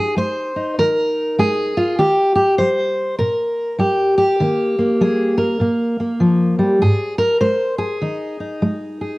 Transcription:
0.00 0.12 G#2 medium
0.00 0.55 D#4 soft
0.00 0.17 G#4 loud
0.16 0.73 G#3 medium
0.16 0.78 C5 loud
0.56 1.77 D#4 soft
0.78 1.34 D#3 medium
0.78 1.39 A#4 loud
1.39 1.94 G#3 medium
1.39 1.98 G#4 medium
1.77 1.99 F4 medium
1.99 2.55 D#3 medium
1.99 2.34 G4 medium
2.35 2.58 G4 medium
2.58 3.16 G3 medium
2.58 3.18 C5 medium
3.19 3.76 A#2 medium
3.19 3.79 A#4 medium
3.79 4.35 G3 medium
3.79 4.17 G4 medium
4.18 5.37 G4 medium
4.40 4.96 D#3 medium
4.40 4.77 A#3 medium
4.79 5.60 A#3 soft
5.01 5.57 G3 medium
5.01 5.39 G#4 medium
5.38 6.81 A#4 medium
5.60 6.16 A#2 medium
5.60 5.99 A#3 soft
6.00 6.82 A#3 soft
6.20 6.58 F3 medium
6.59 6.82 G3 medium
6.82 7.38 G#2 medium
6.82 7.18 G#4 medium
7.18 7.40 A#4 loud
7.41 7.98 G#3 medium
7.41 7.78 C5 loud
7.78 9.00 G#4 medium
8.02 8.58 D#3 medium
8.02 8.39 D#4 soft
8.40 9.18 D#4 soft
8.62 9.18 G#3 medium
9.01 9.18 G#4 soft

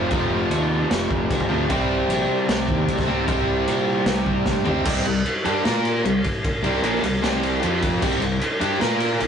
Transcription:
0.00 1.70 C4 medium
0.00 1.66 F4 medium
0.00 1.66 C5 medium
0.00 1.66 G5 medium
0.10 0.27 F1 medium
0.10 1.48 F2 medium
0.10 1.48 C3 medium
0.10 1.48 F3 loud
0.10 kick loud
0.10 crash medium
0.30 0.47 F1 medium
0.50 0.83 D#2 medium
0.50 crash medium
0.91 1.07 F1 loud
0.91 snare loud
0.91 crash medium
1.11 1.27 F1 medium
1.11 kick medium
1.30 1.47 C2 loud
1.30 kick medium
1.30 crash medium
1.40 kick medium
1.49 1.66 D2 loud
1.49 1.69 F2 medium
1.49 1.67 C3 medium
1.49 1.67 F3 medium
1.68 2.03 C2 medium
1.68 3.08 C3 medium
1.68 3.07 G3 medium
1.68 3.06 C4 loud
1.68 4.84 C4 medium
1.68 4.84 G4 medium
1.68 4.84 D5 medium
1.68 kick loud
1.68 crash medium
2.08 2.25 A#1 medium
2.08 crash medium
2.28 2.45 C3 loud
2.49 2.65 C2 medium
2.49 snare loud
2.49 crash medium
2.69 2.85 D#2 loud
2.69 kick medium
2.88 3.05 C2 medium
2.88 kick medium
2.88 crash medium
2.99 kick loud
2.99 snare soft
3.06 3.25 C2 loud
3.06 3.27 C3 medium
3.06 3.28 G3 medium
3.06 3.29 C4 medium
3.27 3.44 C2 medium
3.27 4.65 C3 medium
3.27 4.65 G3 medium
3.27 4.63 C4 loud
3.27 kick loud
3.27 crash medium
3.48 3.64 C2 medium
3.67 4.01 A#2 medium
3.67 crash medium
4.06 4.23 C2 loud
4.06 snare loud
4.06 crash medium
4.26 4.43 C2 loud
4.26 kick medium
4.46 4.63 G2 loud
4.46 kick medium
4.46 snare medium
4.65 4.82 C2 medium
4.65 4.84 C3 medium
4.65 4.84 G3 medium
4.65 4.84 C4 medium
4.65 floor tom loud
4.85 5.04 C2 medium
4.85 5.05 C3 medium
4.85 5.05 G3 medium
4.85 5.05 C4 medium
4.85 kick loud
4.85 crash loud
5.05 5.24 C2 medium
5.05 5.22 C3 medium
5.05 5.22 G3 medium
5.05 ride medium
5.26 ride loud
5.45 5.64 G2 medium
5.45 5.64 G3 medium
5.45 5.64 D4 medium
5.45 5.65 G4 medium
5.45 ride medium
5.64 6.02 A#2 loud
5.64 6.04 A#3 loud
5.64 6.04 F4 medium
5.64 6.04 A#4 medium
5.64 snare loud
5.64 ride medium
5.85 ride medium
6.05 6.23 C2 medium
6.05 6.20 C3 medium
6.05 6.20 G3 medium
6.05 ride loud
6.24 kick medium
6.24 ride medium
6.44 kick loud
6.44 ride loud
6.62 6.81 C2 loud
6.62 6.82 C3 medium
6.62 6.83 G3 medium
6.62 6.83 C4 loud
6.62 ride medium
6.83 7.02 A#1 medium
6.83 7.02 A#2 medium
6.83 7.02 F3 medium
6.83 7.03 A#3 loud
6.83 ride loud
7.02 7.21 C2 medium
7.02 7.19 C3 medium
7.02 7.19 G3 medium
7.02 ride medium
7.22 7.60 C2 loud
7.22 7.61 C3 medium
7.22 7.61 G3 medium
7.22 7.60 C4 medium
7.22 snare medium
7.22 ride medium
7.43 ride medium
7.61 7.99 F2 loud
7.61 8.01 F3 medium
7.61 8.01 C4 loud
7.61 8.01 F4 loud
7.61 ride loud
7.82 kick loud
7.82 ride medium
8.01 8.21 C2 medium
8.01 8.20 C3 loud
8.01 8.20 G3 loud
8.01 8.21 C4 loud
8.01 8.81 D#4 medium
8.01 8.81 C5 medium
8.01 8.80 G5 medium
8.01 kick loud
8.01 crash loud
8.21 8.40 C2 medium
8.21 8.37 C3 medium
8.21 8.37 G3 medium
8.21 ride medium
8.41 ride loud
8.60 8.80 G2 loud
8.60 8.80 G3 medium
8.60 8.80 D4 loud
8.60 8.80 G4 loud
8.60 ride medium
8.80 9.18 A#2 loud
8.80 9.20 A#3 medium
8.80 9.20 F4 medium
8.80 9.21 F4 medium
8.80 9.20 A#4 loud
8.80 9.21 A#4 medium
8.80 9.21 A#5 medium
8.80 snare loud
8.80 ride medium
9.00 ride medium
9.20 9.27 C2 medium
9.20 9.27 C3 medium
9.20 9.27 G3 medium
9.20 9.27 D#4 medium
9.20 9.27 C5 medium
9.20 9.27 G5 medium
9.20 ride loud

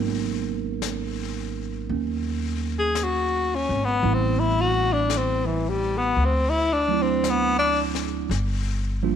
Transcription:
0.00 1.85 G#1 medium
0.00 4.03 F#3 soft
0.00 1.88 A#3 soft
0.00 4.03 B3 soft
0.00 1.91 C#4 soft
0.00 4.05 D#4 soft
0.00 4.04 A#4 soft
0.82 brush sweep soft
0.82 snare soft
0.82 hi-hat pedal medium
1.89 3.64 D#2 medium
1.89 4.03 A#3 soft
1.89 4.04 C#4 soft
1.89 brush sweep soft
2.78 3.05 G#4 medium
2.95 brush sweep soft
2.95 snare soft
2.95 hi-hat pedal medium
3.03 3.57 F#4 medium
3.55 3.86 C#4 medium
3.69 4.01 G#1 medium
3.84 4.15 B3 medium
4.02 6.12 A1 medium
4.02 6.17 G3 soft
4.02 6.17 A3 soft
4.02 6.17 B3 soft
4.02 6.17 C4 soft
4.02 6.18 E4 soft
4.02 brush sweep soft
4.14 4.41 C4 medium
4.39 4.62 E4 medium
4.61 4.94 F#4 loud
4.93 5.19 D4 medium
5.10 brush sweep soft
5.10 snare soft
5.10 hi-hat pedal soft
5.17 5.47 C4 medium
5.46 5.70 E3 medium
5.69 5.99 G3 medium
5.97 6.26 B3 medium
6.16 8.26 D2 medium
6.16 brush sweep soft
6.25 6.51 C4 medium
6.49 6.74 E4 medium
6.73 7.04 D4 medium
6.88 8.30 F#3 medium
6.88 8.30 A3 soft
6.88 8.31 C4 soft
6.88 8.32 D4 soft
6.93 8.32 E4 medium
7.02 7.31 C4 medium
7.24 brush sweep soft
7.24 snare soft
7.24 hi-hat pedal medium
7.30 7.58 B3 medium
7.58 7.80 D4 medium
7.95 snare soft
8.29 9.16 G1 medium
8.29 brush sweep soft
8.29 snare soft
9.03 9.16 F3 medium
9.03 9.16 G3 soft
9.03 9.16 A#3 medium
9.03 9.16 D4 medium
9.03 9.16 F4 medium

